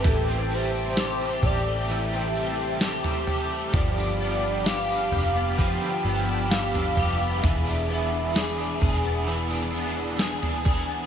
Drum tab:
TB |x-x-x---x-x-x-x-|x-x-x---x-x-x-x-|x-x-x---x-x-x-x-|
SD |----o-------o---|----o-------o---|----o-------o---|
FT |o-----o------oo-|o-----o------oo-|o-----o------oo-|
BD |o-----o---------|o-------o-------|o-----o-------o-|